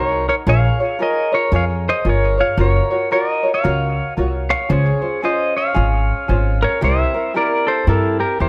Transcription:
0.00 0.28 C2 medium
0.00 0.47 D#4 medium
0.00 0.47 F#4 medium
0.00 0.26 A#4 medium
0.00 0.46 A#4 medium
0.00 0.28 C#5 medium
0.00 0.48 C#5 medium
0.29 0.34 A#4 medium
0.29 0.34 C#5 medium
0.47 0.68 A#1 loud
0.47 0.80 F4 medium
0.47 0.79 G#4 medium
0.47 0.79 A#4 medium
0.47 0.78 C#5 medium
0.47 0.97 C#5 medium
0.47 1.02 F5 loud
0.80 0.98 F4 soft
0.80 0.99 G#4 soft
0.80 0.99 C#5 medium
0.99 1.32 F4 medium
0.99 1.32 G#4 medium
0.99 1.32 A#4 medium
0.99 1.31 A#4 medium
0.99 1.31 C#5 medium
0.99 1.35 D#5 medium
1.32 1.51 F4 soft
1.32 1.52 G#4 soft
1.32 1.52 A#4 medium
1.32 1.52 C#5 medium
1.32 1.54 C#5 medium
1.52 1.86 F2 medium
1.52 2.05 F4 medium
1.52 2.05 G#4 medium
1.52 2.04 A#4 medium
1.52 2.06 C#5 loud
1.52 1.63 C#5 medium
1.56 1.64 F5 medium
1.89 2.06 C5 medium
1.89 2.08 D#5 medium
2.05 2.39 G1 medium
2.05 2.38 F4 medium
2.05 2.38 G#4 medium
2.05 2.38 A#4 medium
2.05 2.36 C#5 medium
2.09 2.38 A#4 medium
2.09 2.39 C#5 medium
2.38 2.57 F4 soft
2.38 2.58 G#4 soft
2.38 2.58 C#5 soft
2.38 2.58 C#5 medium
2.38 2.60 F5 medium
2.57 2.79 F#1 loud
2.57 2.91 F4 medium
2.57 2.90 F#4 medium
2.57 2.91 A#4 medium
2.57 3.09 A#4 medium
2.57 2.89 C#5 medium
2.57 3.12 C#5 medium
2.90 3.10 F4 soft
2.90 3.11 F#4 soft
2.90 3.11 C#5 medium
3.11 3.43 F4 medium
3.11 3.43 F#4 medium
3.11 3.44 A#4 medium
3.11 3.51 A#4 medium
3.11 3.42 C#5 medium
3.11 3.30 D5 medium
3.30 3.54 D#5 medium
3.43 3.63 F4 soft
3.43 3.63 F#4 soft
3.43 3.63 C#5 soft
3.54 4.13 C#5 medium
3.54 4.13 F5 medium
3.64 3.99 C#2 medium
3.64 4.17 F4 medium
3.64 4.17 F#4 medium
3.64 4.16 A#4 medium
3.64 4.19 C#5 medium
4.17 4.52 C2 medium
4.17 4.69 F4 medium
4.17 4.69 F#4 medium
4.17 4.69 A#4 medium
4.17 4.70 C#5 medium
4.50 4.69 C#5 medium
4.50 4.71 F5 medium
4.69 4.91 C#2 loud
4.69 5.02 C#4 medium
4.69 5.02 F4 medium
4.69 5.02 G#4 medium
4.69 5.20 G#4 medium
4.69 5.01 C5 medium
4.69 5.24 C#5 medium
5.02 5.22 C#4 soft
5.02 5.23 F4 soft
5.02 5.22 C5 medium
5.22 5.74 C#4 medium
5.22 5.74 F4 medium
5.22 5.73 G#4 medium
5.22 5.78 C5 medium
5.22 5.54 C5 medium
5.22 5.57 D#5 medium
5.57 6.57 C#5 medium
5.57 6.65 F5 medium
5.74 6.10 G#1 medium
5.74 6.28 C#4 medium
5.74 6.28 F4 medium
5.74 6.27 G#4 medium
6.28 6.63 G#1 medium
6.28 6.81 C#4 medium
6.28 6.82 F4 medium
6.28 6.81 G#4 medium
6.28 6.82 C5 medium
6.62 6.80 A#4 medium
6.62 6.83 C#5 medium
6.81 7.03 C2 loud
6.81 7.14 C4 medium
6.81 7.14 E4 medium
6.81 7.14 G4 medium
6.81 7.13 A#4 medium
6.81 7.32 C5 medium
6.81 7.37 E5 loud
7.14 7.34 C4 soft
7.14 7.35 E4 soft
7.14 7.34 A#4 medium
7.34 7.87 C4 medium
7.34 7.87 E4 medium
7.34 7.86 G4 medium
7.34 7.66 A#4 medium
7.34 7.88 A#4 medium
7.34 7.69 D5 medium
7.67 7.85 A4 medium
7.67 7.88 C5 medium
7.87 8.21 G2 medium
7.87 8.40 C4 medium
7.87 8.18 E4 medium
7.87 8.39 E4 medium
7.87 8.38 G4 medium
7.87 8.19 A4 medium
7.87 8.40 A#4 medium
8.20 8.38 G4 medium
8.20 8.40 A#4 medium
8.39 8.49 E2 medium
8.39 8.49 C4 medium
8.39 8.49 E4 medium
8.39 8.49 G4 medium
8.39 8.49 A#4 medium
8.39 8.49 C5 medium

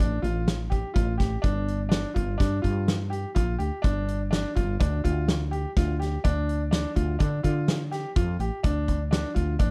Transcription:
0.00 0.19 A1 medium
0.00 0.17 D4 medium
0.00 kick loud
0.00 closed hi-hat medium
0.22 0.83 A1 medium
0.22 0.59 F4 medium
0.22 closed hi-hat medium
0.48 snare loud
0.48 closed hi-hat medium
0.70 0.88 G4 medium
0.70 kick medium
0.70 closed hi-hat soft
0.94 1.36 A1 medium
0.94 1.12 F4 medium
0.94 kick medium
0.94 closed hi-hat medium
1.18 1.36 G4 medium
1.18 kick medium
1.18 snare soft
1.18 closed hi-hat medium
1.42 2.04 G1 medium
1.42 1.78 D4 medium
1.42 kick medium
1.42 closed hi-hat medium
1.68 closed hi-hat medium
1.89 2.08 D4 medium
1.89 snare loud
1.89 closed hi-hat medium
2.14 2.36 G1 medium
2.14 2.33 F4 medium
2.14 kick medium
2.14 closed hi-hat medium
2.38 2.60 G2 medium
2.38 2.56 D4 medium
2.38 kick loud
2.38 snare soft
2.38 closed hi-hat medium
2.62 3.24 G2 medium
2.62 2.99 F4 medium
2.62 kick medium
2.62 closed hi-hat medium
2.88 snare loud
2.88 closed hi-hat medium
3.10 3.29 G4 medium
3.10 closed hi-hat medium
3.35 3.56 A#1 medium
3.35 3.53 F4 medium
3.35 kick loud
3.35 closed hi-hat medium
3.59 3.70 D2 medium
3.59 3.77 G4 medium
3.59 closed hi-hat medium
3.82 4.44 G1 medium
3.82 4.19 D4 medium
3.82 kick loud
3.82 closed hi-hat medium
4.08 closed hi-hat medium
4.31 4.49 D4 medium
4.31 snare loud
4.31 closed hi-hat medium
4.55 4.76 G1 medium
4.55 4.74 F4 medium
4.55 kick medium
4.55 closed hi-hat medium
4.80 5.01 D2 medium
4.80 4.98 D4 medium
4.80 kick loud
4.80 closed hi-hat medium
5.04 5.65 D2 medium
5.04 5.40 F4 medium
5.04 kick medium
5.04 closed hi-hat medium
5.28 snare loud
5.28 closed hi-hat medium
5.51 5.69 G4 medium
5.51 closed hi-hat soft
5.77 6.17 D2 medium
5.77 5.94 F4 medium
5.77 kick loud
5.77 snare soft
5.77 closed hi-hat medium
5.99 6.18 G4 medium
5.99 snare soft
5.99 closed hi-hat soft
6.24 6.85 D2 medium
6.24 6.60 D4 medium
6.24 kick loud
6.24 closed hi-hat medium
6.49 closed hi-hat medium
6.71 6.89 D4 medium
6.71 snare loud
6.71 closed hi-hat medium
6.96 7.16 D2 medium
6.96 7.14 F4 medium
6.96 kick medium
6.96 closed hi-hat medium
7.19 7.40 D3 medium
7.19 7.37 D4 medium
7.19 kick loud
7.19 closed hi-hat medium
7.43 8.04 D3 medium
7.43 7.79 F4 medium
7.43 kick medium
7.43 closed hi-hat medium
7.68 snare loud
7.68 closed hi-hat medium
7.91 8.09 G4 medium
7.91 snare soft
7.91 closed hi-hat medium
8.16 8.36 F2 medium
8.16 8.34 F4 medium
8.16 kick loud
8.16 closed hi-hat medium
8.39 8.49 A1 medium
8.39 8.58 G4 medium
8.39 closed hi-hat medium
8.63 9.24 D2 medium
8.63 8.99 D4 medium
8.63 kick loud
8.63 closed hi-hat medium
8.88 kick medium
8.88 closed hi-hat soft
9.11 9.29 D4 medium
9.11 snare loud
9.11 closed hi-hat medium
9.34 9.56 D2 medium
9.34 9.53 F4 medium
9.34 kick medium
9.34 closed hi-hat medium
9.59 9.71 A1 loud
9.59 9.71 D4 medium
9.59 kick loud
9.59 closed hi-hat medium

